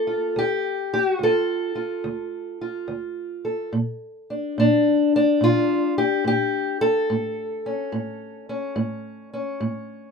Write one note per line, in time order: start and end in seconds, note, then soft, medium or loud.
0.00 0.30 G2 medium
0.00 0.36 A#3 soft
0.00 0.37 A4 loud
0.07 0.42 F4 soft
0.36 1.15 D2 medium
0.36 0.94 G4 loud
0.94 1.05 G4 medium
1.05 1.25 F#4 medium
1.19 1.98 D2 medium
1.23 1.74 F4 medium
1.23 2.90 A4 medium
1.75 2.60 F4 soft
2.04 2.83 D2 medium
2.61 3.70 F4 soft
2.88 3.67 D2 medium
3.45 3.76 A4 soft
3.73 4.51 A#2 medium
4.30 4.58 D4 soft
4.58 5.36 A#2 medium
4.58 5.14 D4 medium
5.16 6.27 D4 medium
5.41 6.19 A#2 medium
5.41 5.98 F4 medium
5.98 6.26 G4 medium
6.24 7.03 A#2 medium
6.24 6.81 G4 loud
6.81 10.11 A4 loud
7.10 7.88 A2 medium
7.66 8.48 C#4 soft
7.92 8.71 A2 medium
8.49 9.32 C#4 soft
8.76 9.55 A2 medium
9.33 10.11 C#4 soft
9.60 10.11 A2 medium